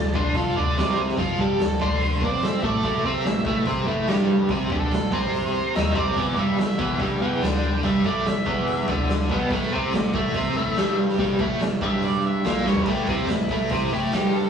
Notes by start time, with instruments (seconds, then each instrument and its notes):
Already playing: tine electric piano D2, overdriven electric guitar D3, lead electric guitar A5
0.14 tine electric piano D2, overdriven electric guitar D3 D4, lead electric guitar C5, kick
0.34 tine electric piano F2, overdriven electric guitar F3 F4, lead electric guitar A4, kick, open hi-hat
0.56 tine electric piano D2, overdriven electric guitar D3 D4, lead electric guitar D5
0.77 tine electric piano C2, overdriven electric guitar C3 C4, snare, open hi-hat
1.09 snare
1.18 tine electric piano F2, overdriven electric guitar F3 F4, kick, open hi-hat
1.38 tine electric piano G2, overdriven electric guitar G3 G4, lead electric guitar A4, kick
1.59 tine electric piano D2, overdriven electric guitar D3, snare, open hi-hat
1.79 tine electric piano D2, overdriven electric guitar D3 D4, lead electric guitar C5, kick
2.00 open hi-hat
2.21 tine electric piano C3, overdriven electric guitar C4 C5, lead electric guitar D5, kick
2.42 lead electric guitar E5, snare, open hi-hat
2.63 tine electric piano A2, overdriven electric guitar A3 A4, lead electric guitar D5, kick
2.83 tine electric piano A1, overdriven electric guitar A2 A3, kick, open hi-hat
3.03 tine electric piano C2, overdriven electric guitar C3 C4, lead electric guitar E5
3.23 tine electric piano A1, overdriven electric guitar A2, lead electric guitar E5, snare, open hi-hat
3.45 tine electric piano A1, overdriven electric guitar A2 A3, kick
3.65 tine electric piano C2, overdriven electric guitar C3 C4, kick, open hi-hat
3.87 tine electric piano A1, overdriven electric guitar A2 A3
4.07 tine electric piano G1, overdriven electric guitar G2 G3, snare, open hi-hat
4.49 tine electric piano C2, overdriven electric guitar C3 C4, kick, open hi-hat
4.69 tine electric piano D2, overdriven electric guitar D3 D4, lead electric guitar A4, kick
4.91 tine electric piano A1, overdriven electric guitar A2, snare, open hi-hat
5.12 tine electric piano C2, overdriven electric guitar C3 C4, lead electric guitar C5, kick
5.34 open hi-hat
5.54 lead electric guitar C5
5.75 tine electric piano D#2, overdriven electric guitar D#3 D#4, lead electric guitar E5, snare, open hi-hat
5.95 tine electric piano C2, overdriven electric guitar C3 C4, lead electric guitar D5, kick
6.16 tine electric piano E1, overdriven electric guitar E2 E3, kick, open hi-hat
6.37 tine electric piano G1, overdriven electric guitar G2 G3, lead electric guitar E5
6.58 tine electric piano E1, overdriven electric guitar E2, lead electric guitar E5, snare, open hi-hat
6.79 tine electric piano E1, overdriven electric guitar E2 E3, kick
7.00 tine electric piano G1, overdriven electric guitar G2 G3, kick, open hi-hat
7.20 tine electric piano E1, overdriven electric guitar E2 E3, lead electric guitar G5
7.42 tine electric piano D2, overdriven electric guitar D3 D4, snare, open hi-hat
7.83 tine electric piano G1, overdriven electric guitar G2 G3, lead electric guitar E5, kick, open hi-hat
8.04 tine electric piano A1, overdriven electric guitar A2 A3, lead electric guitar D5, kick
8.25 tine electric piano E1, overdriven electric guitar E2, lead electric guitar E5, snare, open hi-hat
8.45 tine electric piano E1, overdriven electric guitar E2 E3, kick
8.67 open hi-hat
8.88 tine electric piano D2, overdriven electric guitar D3 D4, kick
9.08 snare, open hi-hat
9.29 tine electric piano B1, overdriven electric guitar B2 B3, lead electric guitar D5 G5, kick
9.50 tine electric piano A1, overdriven electric guitar A2 A3, lead electric guitar E5 G5, kick, open hi-hat
9.72 tine electric piano C2, overdriven electric guitar C3 C4, lead electric guitar C5 E5
9.92 tine electric piano A1, overdriven electric guitar A2, lead electric guitar C5 E5, snare, open hi-hat
10.14 tine electric piano A1, overdriven electric guitar A2 A3, lead electric guitar E5, kick
10.34 tine electric piano C2, overdriven electric guitar C3 C4, kick, open hi-hat
10.56 tine electric piano A1, overdriven electric guitar A2 A3
10.76 tine electric piano G1, overdriven electric guitar G2 G3, snare, open hi-hat
11.09 snare
11.18 tine electric piano G1, overdriven electric guitar G2 G3, kick, open hi-hat
11.39 tine electric piano A1, overdriven electric guitar A2 A3, kick
11.60 tine electric piano E1, overdriven electric guitar E2, snare, open hi-hat
11.81 tine electric piano G1, overdriven electric guitar G2 G3, lead electric guitar E5, kick
12.02 lead electric guitar D5, open hi-hat
12.26 lead electric guitar E5
12.44 tine electric piano A#1, overdriven electric guitar A#2 A#3, lead electric guitar E5, snare, open hi-hat
12.65 tine electric piano G1, overdriven electric guitar G2 G3, lead electric guitar C#5, snare
12.75 floor tom
12.86 tine electric piano A1, overdriven electric guitar A2 A3, lead electric guitar G4, kick, crash
13.06 tine electric piano C2, overdriven electric guitar C3 C4, lead electric guitar E4, kick, open hi-hat
13.27 tine electric piano A1, overdriven electric guitar A2, snare, open hi-hat
13.49 tine electric piano A1, overdriven electric guitar A2 A3, kick, open hi-hat
13.69 tine electric piano C2, overdriven electric guitar C3 C4, lead electric guitar E4, kick, open hi-hat
13.91 tine electric piano A1, overdriven electric guitar A2 A3, lead electric guitar G4, open hi-hat
14.12 tine electric piano G1, overdriven electric guitar G2 G3, snare, open hi-hat
14.33 lead electric guitar A4, open hi-hat